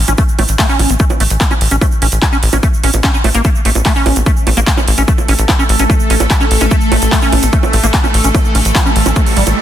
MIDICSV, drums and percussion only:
0, 0, Header, 1, 2, 480
1, 0, Start_track
1, 0, Key_signature, 3, "major"
1, 0, Tempo, 408163
1, 214, Time_signature, 4, 2, 24, 8
1, 11308, End_track
2, 0, Start_track
2, 0, Title_t, "Drums"
2, 94, Note_on_c, 9, 42, 69
2, 94, Note_on_c, 9, 60, 38
2, 95, Note_on_c, 9, 82, 86
2, 206, Note_off_c, 9, 82, 0
2, 206, Note_on_c, 9, 82, 65
2, 212, Note_off_c, 9, 42, 0
2, 212, Note_off_c, 9, 60, 0
2, 214, Note_on_c, 9, 36, 122
2, 214, Note_on_c, 9, 42, 65
2, 324, Note_off_c, 9, 82, 0
2, 331, Note_off_c, 9, 42, 0
2, 332, Note_off_c, 9, 36, 0
2, 336, Note_on_c, 9, 82, 46
2, 454, Note_off_c, 9, 82, 0
2, 454, Note_on_c, 9, 46, 108
2, 454, Note_on_c, 9, 60, 78
2, 567, Note_on_c, 9, 82, 87
2, 571, Note_off_c, 9, 46, 0
2, 571, Note_off_c, 9, 60, 0
2, 574, Note_on_c, 9, 42, 58
2, 684, Note_off_c, 9, 82, 0
2, 691, Note_off_c, 9, 42, 0
2, 694, Note_on_c, 9, 36, 114
2, 694, Note_on_c, 9, 39, 127
2, 694, Note_on_c, 9, 46, 67
2, 694, Note_on_c, 9, 82, 70
2, 812, Note_off_c, 9, 36, 0
2, 812, Note_off_c, 9, 39, 0
2, 812, Note_off_c, 9, 46, 0
2, 812, Note_off_c, 9, 82, 0
2, 814, Note_on_c, 9, 82, 40
2, 932, Note_off_c, 9, 82, 0
2, 934, Note_on_c, 9, 46, 111
2, 934, Note_on_c, 9, 60, 37
2, 1051, Note_off_c, 9, 46, 0
2, 1051, Note_off_c, 9, 60, 0
2, 1054, Note_on_c, 9, 42, 67
2, 1061, Note_on_c, 9, 82, 91
2, 1166, Note_off_c, 9, 82, 0
2, 1166, Note_on_c, 9, 82, 60
2, 1172, Note_off_c, 9, 42, 0
2, 1174, Note_on_c, 9, 36, 127
2, 1174, Note_on_c, 9, 42, 65
2, 1283, Note_off_c, 9, 82, 0
2, 1291, Note_off_c, 9, 42, 0
2, 1291, Note_on_c, 9, 82, 43
2, 1292, Note_off_c, 9, 36, 0
2, 1294, Note_on_c, 9, 60, 79
2, 1409, Note_off_c, 9, 82, 0
2, 1412, Note_off_c, 9, 60, 0
2, 1414, Note_on_c, 9, 46, 117
2, 1530, Note_on_c, 9, 82, 87
2, 1532, Note_off_c, 9, 46, 0
2, 1534, Note_on_c, 9, 42, 62
2, 1648, Note_off_c, 9, 82, 0
2, 1648, Note_on_c, 9, 82, 66
2, 1652, Note_off_c, 9, 42, 0
2, 1654, Note_on_c, 9, 36, 124
2, 1654, Note_on_c, 9, 39, 119
2, 1654, Note_on_c, 9, 42, 67
2, 1766, Note_off_c, 9, 82, 0
2, 1772, Note_off_c, 9, 36, 0
2, 1772, Note_off_c, 9, 39, 0
2, 1772, Note_off_c, 9, 42, 0
2, 1772, Note_on_c, 9, 82, 38
2, 1774, Note_on_c, 9, 60, 38
2, 1889, Note_off_c, 9, 82, 0
2, 1892, Note_off_c, 9, 60, 0
2, 1894, Note_on_c, 9, 46, 110
2, 2008, Note_on_c, 9, 82, 88
2, 2012, Note_off_c, 9, 46, 0
2, 2014, Note_on_c, 9, 42, 64
2, 2126, Note_off_c, 9, 82, 0
2, 2132, Note_off_c, 9, 42, 0
2, 2134, Note_on_c, 9, 36, 114
2, 2134, Note_on_c, 9, 42, 60
2, 2134, Note_on_c, 9, 60, 73
2, 2136, Note_on_c, 9, 82, 65
2, 2252, Note_off_c, 9, 36, 0
2, 2252, Note_off_c, 9, 42, 0
2, 2252, Note_off_c, 9, 60, 0
2, 2253, Note_off_c, 9, 82, 0
2, 2253, Note_on_c, 9, 82, 42
2, 2370, Note_off_c, 9, 82, 0
2, 2374, Note_on_c, 9, 46, 110
2, 2492, Note_off_c, 9, 46, 0
2, 2494, Note_on_c, 9, 42, 61
2, 2495, Note_on_c, 9, 82, 74
2, 2612, Note_off_c, 9, 42, 0
2, 2612, Note_off_c, 9, 82, 0
2, 2614, Note_on_c, 9, 36, 124
2, 2614, Note_on_c, 9, 39, 122
2, 2614, Note_on_c, 9, 42, 65
2, 2614, Note_on_c, 9, 60, 37
2, 2621, Note_on_c, 9, 82, 66
2, 2732, Note_off_c, 9, 36, 0
2, 2732, Note_off_c, 9, 39, 0
2, 2732, Note_off_c, 9, 42, 0
2, 2732, Note_off_c, 9, 60, 0
2, 2736, Note_off_c, 9, 82, 0
2, 2736, Note_on_c, 9, 82, 37
2, 2853, Note_off_c, 9, 82, 0
2, 2854, Note_on_c, 9, 46, 106
2, 2966, Note_on_c, 9, 82, 77
2, 2972, Note_off_c, 9, 46, 0
2, 2974, Note_on_c, 9, 42, 64
2, 2974, Note_on_c, 9, 60, 80
2, 3084, Note_off_c, 9, 82, 0
2, 3092, Note_off_c, 9, 42, 0
2, 3092, Note_off_c, 9, 60, 0
2, 3094, Note_on_c, 9, 36, 115
2, 3094, Note_on_c, 9, 42, 63
2, 3094, Note_on_c, 9, 82, 63
2, 3212, Note_off_c, 9, 36, 0
2, 3212, Note_off_c, 9, 42, 0
2, 3212, Note_off_c, 9, 82, 0
2, 3219, Note_on_c, 9, 82, 41
2, 3334, Note_on_c, 9, 46, 116
2, 3336, Note_off_c, 9, 82, 0
2, 3449, Note_on_c, 9, 82, 90
2, 3452, Note_off_c, 9, 46, 0
2, 3454, Note_on_c, 9, 42, 61
2, 3454, Note_on_c, 9, 60, 38
2, 3566, Note_off_c, 9, 82, 0
2, 3566, Note_on_c, 9, 82, 67
2, 3572, Note_off_c, 9, 42, 0
2, 3572, Note_off_c, 9, 60, 0
2, 3574, Note_on_c, 9, 36, 125
2, 3574, Note_on_c, 9, 39, 119
2, 3574, Note_on_c, 9, 42, 64
2, 3683, Note_off_c, 9, 82, 0
2, 3692, Note_off_c, 9, 36, 0
2, 3692, Note_off_c, 9, 39, 0
2, 3692, Note_off_c, 9, 42, 0
2, 3694, Note_on_c, 9, 82, 40
2, 3811, Note_off_c, 9, 82, 0
2, 3814, Note_on_c, 9, 46, 110
2, 3814, Note_on_c, 9, 60, 77
2, 3931, Note_on_c, 9, 82, 84
2, 3932, Note_off_c, 9, 46, 0
2, 3932, Note_off_c, 9, 60, 0
2, 3934, Note_on_c, 9, 42, 62
2, 4049, Note_off_c, 9, 82, 0
2, 4049, Note_on_c, 9, 82, 66
2, 4052, Note_off_c, 9, 42, 0
2, 4054, Note_on_c, 9, 36, 118
2, 4054, Note_on_c, 9, 42, 65
2, 4166, Note_off_c, 9, 82, 0
2, 4172, Note_off_c, 9, 36, 0
2, 4172, Note_off_c, 9, 42, 0
2, 4176, Note_on_c, 9, 82, 37
2, 4293, Note_off_c, 9, 82, 0
2, 4294, Note_on_c, 9, 46, 104
2, 4412, Note_off_c, 9, 46, 0
2, 4414, Note_on_c, 9, 42, 58
2, 4414, Note_on_c, 9, 60, 38
2, 4416, Note_on_c, 9, 82, 73
2, 4523, Note_off_c, 9, 82, 0
2, 4523, Note_on_c, 9, 82, 61
2, 4532, Note_off_c, 9, 42, 0
2, 4532, Note_off_c, 9, 60, 0
2, 4534, Note_on_c, 9, 36, 121
2, 4534, Note_on_c, 9, 39, 118
2, 4534, Note_on_c, 9, 46, 63
2, 4641, Note_off_c, 9, 82, 0
2, 4650, Note_on_c, 9, 82, 35
2, 4652, Note_off_c, 9, 36, 0
2, 4652, Note_off_c, 9, 39, 0
2, 4652, Note_off_c, 9, 46, 0
2, 4767, Note_off_c, 9, 82, 0
2, 4774, Note_on_c, 9, 46, 99
2, 4774, Note_on_c, 9, 60, 81
2, 4892, Note_off_c, 9, 46, 0
2, 4892, Note_off_c, 9, 60, 0
2, 4892, Note_on_c, 9, 82, 87
2, 4894, Note_on_c, 9, 42, 66
2, 5010, Note_off_c, 9, 82, 0
2, 5010, Note_on_c, 9, 82, 60
2, 5012, Note_off_c, 9, 42, 0
2, 5014, Note_on_c, 9, 36, 120
2, 5014, Note_on_c, 9, 42, 60
2, 5128, Note_off_c, 9, 82, 0
2, 5131, Note_off_c, 9, 36, 0
2, 5132, Note_off_c, 9, 42, 0
2, 5133, Note_on_c, 9, 82, 40
2, 5250, Note_off_c, 9, 82, 0
2, 5254, Note_on_c, 9, 46, 104
2, 5254, Note_on_c, 9, 60, 42
2, 5372, Note_off_c, 9, 46, 0
2, 5372, Note_off_c, 9, 60, 0
2, 5374, Note_on_c, 9, 42, 63
2, 5381, Note_on_c, 9, 82, 77
2, 5492, Note_off_c, 9, 42, 0
2, 5494, Note_off_c, 9, 82, 0
2, 5494, Note_on_c, 9, 36, 116
2, 5494, Note_on_c, 9, 39, 114
2, 5494, Note_on_c, 9, 42, 65
2, 5494, Note_on_c, 9, 82, 62
2, 5612, Note_off_c, 9, 36, 0
2, 5612, Note_off_c, 9, 39, 0
2, 5612, Note_off_c, 9, 42, 0
2, 5612, Note_off_c, 9, 82, 0
2, 5614, Note_on_c, 9, 60, 77
2, 5614, Note_on_c, 9, 82, 38
2, 5731, Note_off_c, 9, 60, 0
2, 5731, Note_off_c, 9, 82, 0
2, 5734, Note_on_c, 9, 46, 106
2, 5848, Note_on_c, 9, 82, 70
2, 5851, Note_off_c, 9, 46, 0
2, 5854, Note_on_c, 9, 42, 63
2, 5966, Note_off_c, 9, 82, 0
2, 5971, Note_off_c, 9, 42, 0
2, 5972, Note_on_c, 9, 82, 62
2, 5974, Note_on_c, 9, 36, 113
2, 5974, Note_on_c, 9, 42, 64
2, 6090, Note_off_c, 9, 82, 0
2, 6091, Note_off_c, 9, 36, 0
2, 6091, Note_off_c, 9, 42, 0
2, 6094, Note_on_c, 9, 60, 40
2, 6094, Note_on_c, 9, 82, 43
2, 6211, Note_off_c, 9, 82, 0
2, 6212, Note_off_c, 9, 60, 0
2, 6214, Note_on_c, 9, 46, 102
2, 6332, Note_off_c, 9, 46, 0
2, 6334, Note_on_c, 9, 42, 62
2, 6335, Note_on_c, 9, 82, 81
2, 6451, Note_off_c, 9, 82, 0
2, 6451, Note_on_c, 9, 82, 56
2, 6452, Note_off_c, 9, 42, 0
2, 6454, Note_on_c, 9, 36, 105
2, 6454, Note_on_c, 9, 39, 119
2, 6454, Note_on_c, 9, 42, 69
2, 6454, Note_on_c, 9, 60, 80
2, 6568, Note_off_c, 9, 82, 0
2, 6571, Note_off_c, 9, 36, 0
2, 6572, Note_off_c, 9, 39, 0
2, 6572, Note_off_c, 9, 42, 0
2, 6572, Note_off_c, 9, 60, 0
2, 6578, Note_on_c, 9, 82, 35
2, 6694, Note_on_c, 9, 46, 102
2, 6696, Note_off_c, 9, 82, 0
2, 6806, Note_on_c, 9, 82, 79
2, 6812, Note_off_c, 9, 46, 0
2, 6814, Note_on_c, 9, 42, 66
2, 6924, Note_off_c, 9, 82, 0
2, 6932, Note_off_c, 9, 42, 0
2, 6934, Note_on_c, 9, 36, 114
2, 6934, Note_on_c, 9, 42, 64
2, 6934, Note_on_c, 9, 60, 42
2, 6944, Note_on_c, 9, 82, 57
2, 7051, Note_off_c, 9, 82, 0
2, 7051, Note_on_c, 9, 82, 45
2, 7052, Note_off_c, 9, 36, 0
2, 7052, Note_off_c, 9, 42, 0
2, 7052, Note_off_c, 9, 60, 0
2, 7169, Note_off_c, 9, 82, 0
2, 7174, Note_on_c, 9, 46, 105
2, 7291, Note_on_c, 9, 82, 75
2, 7292, Note_off_c, 9, 46, 0
2, 7294, Note_on_c, 9, 42, 65
2, 7294, Note_on_c, 9, 60, 82
2, 7409, Note_off_c, 9, 82, 0
2, 7412, Note_off_c, 9, 42, 0
2, 7412, Note_off_c, 9, 60, 0
2, 7414, Note_on_c, 9, 36, 115
2, 7414, Note_on_c, 9, 39, 113
2, 7414, Note_on_c, 9, 42, 66
2, 7414, Note_on_c, 9, 82, 64
2, 7531, Note_off_c, 9, 82, 0
2, 7531, Note_on_c, 9, 82, 35
2, 7532, Note_off_c, 9, 36, 0
2, 7532, Note_off_c, 9, 39, 0
2, 7532, Note_off_c, 9, 42, 0
2, 7649, Note_off_c, 9, 82, 0
2, 7654, Note_on_c, 9, 46, 103
2, 7771, Note_off_c, 9, 46, 0
2, 7771, Note_on_c, 9, 82, 70
2, 7774, Note_on_c, 9, 42, 64
2, 7774, Note_on_c, 9, 60, 38
2, 7889, Note_off_c, 9, 82, 0
2, 7889, Note_on_c, 9, 82, 65
2, 7892, Note_off_c, 9, 42, 0
2, 7892, Note_off_c, 9, 60, 0
2, 7894, Note_on_c, 9, 36, 110
2, 7894, Note_on_c, 9, 42, 67
2, 8006, Note_off_c, 9, 82, 0
2, 8006, Note_on_c, 9, 82, 36
2, 8012, Note_off_c, 9, 36, 0
2, 8012, Note_off_c, 9, 42, 0
2, 8123, Note_off_c, 9, 82, 0
2, 8134, Note_on_c, 9, 46, 103
2, 8134, Note_on_c, 9, 60, 81
2, 8252, Note_off_c, 9, 46, 0
2, 8252, Note_off_c, 9, 60, 0
2, 8254, Note_on_c, 9, 42, 59
2, 8256, Note_on_c, 9, 82, 80
2, 8372, Note_off_c, 9, 42, 0
2, 8374, Note_off_c, 9, 82, 0
2, 8374, Note_on_c, 9, 36, 108
2, 8374, Note_on_c, 9, 39, 116
2, 8374, Note_on_c, 9, 46, 60
2, 8377, Note_on_c, 9, 82, 68
2, 8489, Note_off_c, 9, 82, 0
2, 8489, Note_on_c, 9, 82, 39
2, 8492, Note_off_c, 9, 36, 0
2, 8492, Note_off_c, 9, 39, 0
2, 8492, Note_off_c, 9, 46, 0
2, 8607, Note_off_c, 9, 82, 0
2, 8614, Note_on_c, 9, 46, 98
2, 8614, Note_on_c, 9, 60, 42
2, 8732, Note_off_c, 9, 46, 0
2, 8732, Note_off_c, 9, 60, 0
2, 8734, Note_on_c, 9, 42, 67
2, 8737, Note_on_c, 9, 82, 81
2, 8847, Note_off_c, 9, 82, 0
2, 8847, Note_on_c, 9, 82, 57
2, 8852, Note_off_c, 9, 42, 0
2, 8854, Note_on_c, 9, 36, 106
2, 8854, Note_on_c, 9, 42, 70
2, 8965, Note_off_c, 9, 82, 0
2, 8972, Note_off_c, 9, 36, 0
2, 8972, Note_off_c, 9, 42, 0
2, 8974, Note_on_c, 9, 60, 81
2, 8976, Note_on_c, 9, 82, 37
2, 9092, Note_off_c, 9, 60, 0
2, 9094, Note_off_c, 9, 82, 0
2, 9094, Note_on_c, 9, 46, 107
2, 9212, Note_off_c, 9, 46, 0
2, 9214, Note_on_c, 9, 42, 70
2, 9220, Note_on_c, 9, 82, 84
2, 9328, Note_off_c, 9, 82, 0
2, 9328, Note_on_c, 9, 82, 59
2, 9332, Note_off_c, 9, 42, 0
2, 9334, Note_on_c, 9, 36, 108
2, 9334, Note_on_c, 9, 39, 114
2, 9334, Note_on_c, 9, 42, 68
2, 9446, Note_off_c, 9, 82, 0
2, 9452, Note_off_c, 9, 36, 0
2, 9452, Note_off_c, 9, 39, 0
2, 9452, Note_off_c, 9, 42, 0
2, 9454, Note_on_c, 9, 60, 41
2, 9458, Note_on_c, 9, 82, 40
2, 9572, Note_off_c, 9, 60, 0
2, 9574, Note_on_c, 9, 46, 102
2, 9575, Note_off_c, 9, 82, 0
2, 9692, Note_off_c, 9, 46, 0
2, 9693, Note_on_c, 9, 82, 77
2, 9694, Note_on_c, 9, 42, 69
2, 9811, Note_off_c, 9, 82, 0
2, 9812, Note_off_c, 9, 42, 0
2, 9814, Note_on_c, 9, 36, 120
2, 9814, Note_on_c, 9, 42, 65
2, 9814, Note_on_c, 9, 60, 81
2, 9819, Note_on_c, 9, 82, 65
2, 9932, Note_off_c, 9, 36, 0
2, 9932, Note_off_c, 9, 42, 0
2, 9932, Note_off_c, 9, 60, 0
2, 9934, Note_off_c, 9, 82, 0
2, 9934, Note_on_c, 9, 82, 39
2, 10052, Note_off_c, 9, 82, 0
2, 10054, Note_on_c, 9, 46, 102
2, 10172, Note_off_c, 9, 46, 0
2, 10174, Note_on_c, 9, 42, 61
2, 10181, Note_on_c, 9, 82, 81
2, 10292, Note_off_c, 9, 42, 0
2, 10294, Note_on_c, 9, 36, 116
2, 10294, Note_on_c, 9, 39, 124
2, 10294, Note_on_c, 9, 42, 72
2, 10294, Note_on_c, 9, 60, 40
2, 10299, Note_off_c, 9, 82, 0
2, 10302, Note_on_c, 9, 82, 71
2, 10412, Note_off_c, 9, 36, 0
2, 10412, Note_off_c, 9, 39, 0
2, 10412, Note_off_c, 9, 42, 0
2, 10412, Note_off_c, 9, 60, 0
2, 10419, Note_off_c, 9, 82, 0
2, 10420, Note_on_c, 9, 82, 41
2, 10534, Note_on_c, 9, 46, 96
2, 10537, Note_off_c, 9, 82, 0
2, 10652, Note_off_c, 9, 46, 0
2, 10654, Note_on_c, 9, 42, 73
2, 10654, Note_on_c, 9, 60, 82
2, 10654, Note_on_c, 9, 82, 76
2, 10768, Note_off_c, 9, 82, 0
2, 10768, Note_on_c, 9, 82, 58
2, 10772, Note_off_c, 9, 42, 0
2, 10772, Note_off_c, 9, 60, 0
2, 10774, Note_on_c, 9, 36, 112
2, 10774, Note_on_c, 9, 42, 67
2, 10886, Note_off_c, 9, 82, 0
2, 10892, Note_off_c, 9, 36, 0
2, 10892, Note_off_c, 9, 42, 0
2, 10894, Note_on_c, 9, 46, 59
2, 10895, Note_on_c, 9, 82, 40
2, 11012, Note_off_c, 9, 46, 0
2, 11013, Note_off_c, 9, 82, 0
2, 11015, Note_on_c, 9, 46, 107
2, 11128, Note_on_c, 9, 82, 81
2, 11132, Note_off_c, 9, 46, 0
2, 11135, Note_on_c, 9, 42, 71
2, 11135, Note_on_c, 9, 60, 41
2, 11245, Note_off_c, 9, 82, 0
2, 11252, Note_off_c, 9, 42, 0
2, 11252, Note_off_c, 9, 60, 0
2, 11308, End_track
0, 0, End_of_file